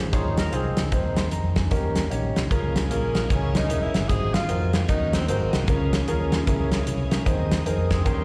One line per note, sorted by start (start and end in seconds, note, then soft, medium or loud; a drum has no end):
0.00 0.15 G#1 medium
0.00 0.91 C#3 medium
0.00 0.89 F3 medium
0.00 0.13 G#3 medium
0.00 0.12 A#3 medium
0.13 0.47 D#2 medium
0.13 0.73 D#3 medium
0.13 1.70 G#3 medium
0.13 0.41 D#4 medium
0.13 1.70 D#4 medium
0.13 0.37 D#4 medium
0.13 0.42 F4 medium
0.13 0.42 G#4 medium
0.13 0.37 C5 medium
0.13 0.42 C#5 medium
0.13 kick loud
0.13 closed hi-hat medium
0.37 0.53 C#4 medium
0.37 0.52 A#4 medium
0.37 snare loud
0.37 closed hi-hat medium
0.52 0.74 C2 medium
0.52 0.91 C4 medium
0.52 0.81 D#4 medium
0.52 0.81 F4 medium
0.52 0.81 G#4 medium
0.52 0.91 G#4 medium
0.52 0.81 C5 medium
0.52 closed hi-hat medium
0.77 0.90 C#2 medium
0.77 snare loud
0.77 closed hi-hat medium
0.92 1.26 D#2 loud
0.92 1.53 D#3 medium
0.92 1.71 D#3 medium
0.92 1.21 C4 medium
0.92 1.71 C4 medium
0.92 1.21 D#4 medium
0.92 1.21 G#4 medium
0.92 1.17 C5 medium
0.92 kick loud
0.92 closed hi-hat medium
1.17 1.32 D#5 soft
1.17 1.31 C6 medium
1.17 snare medium
1.17 closed hi-hat medium
1.31 1.66 F2 medium
1.31 1.55 A#5 medium
1.31 closed hi-hat medium
1.56 1.94 C5 soft
1.56 1.94 G#5 medium
1.56 kick medium
1.56 snare loud
1.56 closed hi-hat medium
1.71 2.05 D#2 medium
1.71 2.32 D#3 medium
1.71 2.51 D#3 medium
1.71 2.51 G3 medium
1.71 4.08 A#3 medium
1.71 2.00 C#4 medium
1.71 2.51 C#4 medium
1.71 2.00 D#4 medium
1.71 2.00 G4 medium
1.71 2.00 A#4 medium
1.71 kick loud
1.71 closed hi-hat medium
1.96 snare medium
1.96 closed hi-hat medium
2.10 2.32 A#1 medium
2.10 2.39 C#4 medium
2.10 2.39 D#4 medium
2.10 2.40 G4 medium
2.10 2.40 C#5 medium
2.10 closed hi-hat medium
2.36 2.49 C2 medium
2.36 snare medium
2.36 closed hi-hat medium
2.50 2.90 C#2 medium
2.50 3.11 C#3 medium
2.50 3.30 F3 medium
2.50 4.86 G#3 medium
2.50 4.87 G#3 medium
2.50 4.08 A#3 soft
2.50 2.79 C#4 medium
2.50 4.08 C#4 medium
2.50 2.79 F4 medium
2.50 4.08 G#4 medium
2.50 2.80 G#4 medium
2.50 2.80 A#4 medium
2.50 kick loud
2.50 closed hi-hat medium
2.76 snare medium
2.76 closed hi-hat medium
2.90 3.24 A#1 medium
2.90 3.32 A#3 medium
2.90 3.19 C#4 medium
2.90 3.19 F4 medium
2.90 3.19 G#4 medium
2.90 3.20 A#4 medium
2.90 closed hi-hat medium
3.15 snare loud
3.15 closed hi-hat medium
3.30 3.64 C#2 medium
3.30 3.91 C#3 medium
3.30 4.09 E3 medium
3.30 3.59 C#4 medium
3.30 3.59 E4 medium
3.30 3.59 G#4 medium
3.30 3.59 A#4 medium
3.30 kick loud
3.30 closed hi-hat medium
3.55 3.84 D#4 medium
3.55 snare loud
3.55 closed hi-hat medium
3.69 3.91 E1 medium
3.69 3.98 C#4 medium
3.69 3.98 E4 medium
3.69 3.99 G#4 medium
3.69 3.99 A#4 medium
3.69 closed hi-hat medium
3.82 4.10 E4 medium
3.94 4.07 G1 medium
3.94 snare medium
3.94 closed hi-hat medium
4.09 4.43 G#1 medium
4.09 4.70 G#2 medium
4.09 5.66 D#3 medium
4.09 4.88 D#3 medium
4.09 4.88 C4 medium
4.09 4.38 C4 medium
4.09 4.88 C4 medium
4.09 4.38 D#4 medium
4.09 4.38 F#4 medium
4.09 4.35 G#4 medium
4.09 4.88 G#4 medium
4.09 4.38 G#4 medium
4.09 kick loud
4.09 closed hi-hat medium
4.34 4.74 F4 loud
4.34 snare loud
4.34 closed hi-hat medium
4.49 4.83 F2 medium
4.49 4.77 C4 medium
4.49 4.78 D#4 medium
4.49 4.78 F#4 medium
4.49 4.78 A#4 medium
4.49 closed hi-hat medium
4.73 snare loud
4.73 closed hi-hat medium
4.87 5.30 D#2 medium
4.87 5.26 D#3 medium
4.87 5.29 D#3 medium
4.87 5.27 A#3 medium
4.87 5.67 A#3 medium
4.87 5.27 C#4 medium
4.87 5.18 C#4 medium
4.87 5.28 C#4 medium
4.87 5.15 D#4 medium
4.87 5.18 D#4 medium
4.87 5.27 F#4 medium
4.87 5.18 F#4 medium
4.87 5.18 A#4 medium
4.87 kick loud
4.87 closed hi-hat medium
5.13 5.27 C4 medium
5.13 snare loud
5.13 closed hi-hat medium
5.27 5.50 G#1 medium
5.27 5.65 G#2 medium
5.27 7.24 G#3 medium
5.27 5.67 G#3 medium
5.27 5.65 A#3 medium
5.27 5.67 C4 medium
5.27 5.58 C4 medium
5.27 5.57 C4 medium
5.27 5.68 C4 medium
5.27 5.67 F#4 medium
5.27 5.57 F#4 medium
5.27 5.57 G#4 medium
5.27 5.57 A#4 medium
5.27 closed hi-hat medium
5.53 5.66 C2 medium
5.53 snare medium
5.53 closed hi-hat medium
5.66 6.02 C#2 loud
5.66 6.29 C#3 medium
5.66 6.46 F3 medium
5.66 6.47 F3 medium
5.66 8.03 G#3 medium
5.66 7.24 A#3 medium
5.66 7.25 A#3 medium
5.66 6.46 C#4 medium
5.66 7.25 C#4 medium
5.66 5.97 C#4 medium
5.66 5.97 F4 medium
5.66 7.24 G#4 medium
5.66 5.97 G#4 medium
5.66 5.97 A#4 medium
5.66 kick loud
5.66 closed hi-hat medium
5.93 snare medium
5.93 closed hi-hat medium
6.08 6.42 D#2 medium
6.08 6.36 C#4 medium
6.08 6.36 F4 medium
6.08 6.36 G#4 medium
6.08 6.37 A#4 medium
6.08 closed hi-hat medium
6.32 snare loud
6.32 closed hi-hat medium
6.47 6.81 C#2 loud
6.47 7.08 C#3 medium
6.47 7.25 E3 medium
6.47 7.26 E3 medium
6.47 6.76 C#4 medium
6.47 7.26 C#4 medium
6.47 6.76 E4 medium
6.47 6.76 G#4 medium
6.47 6.76 A#4 medium
6.47 kick loud
6.47 closed hi-hat medium
6.72 snare medium
6.72 closed hi-hat medium
6.87 7.21 C2 medium
6.87 7.10 E4 medium
6.87 7.10 C#5 medium
6.87 closed hi-hat medium
7.11 7.49 C#4 medium
7.11 7.49 A#4 medium
7.11 snare loud
7.11 closed hi-hat medium
7.26 7.60 D#2 loud
7.26 8.05 C3 medium
7.26 8.24 D#3 medium
7.26 8.05 D#3 medium
7.26 7.87 D#3 medium
7.26 8.05 G#3 medium
7.26 7.55 C4 medium
7.26 8.05 C4 medium
7.26 8.05 D#4 soft
7.26 7.55 D#4 medium
7.26 8.24 D#4 medium
7.26 8.05 G#4 medium
7.26 7.55 G#4 medium
7.26 7.55 C5 medium
7.26 kick loud
7.26 closed hi-hat medium
7.52 snare loud
7.52 closed hi-hat medium
7.66 8.00 F2 medium
7.66 7.95 C4 medium
7.66 7.95 D#4 medium
7.66 7.95 G#4 medium
7.66 7.95 A#4 medium
7.66 closed hi-hat medium
7.91 8.06 C4 medium
7.91 8.05 G#4 medium
7.91 kick medium
7.91 snare medium
7.91 closed hi-hat medium
8.05 8.24 D#2 medium
8.05 8.24 D#3 medium
8.05 8.24 G3 medium
8.05 8.24 A#3 medium
8.05 8.24 C#4 medium
8.05 8.24 D#4 medium
8.05 8.24 G4 medium
8.05 8.24 A#4 medium
8.05 8.24 C5 medium
8.05 kick loud
8.05 closed hi-hat medium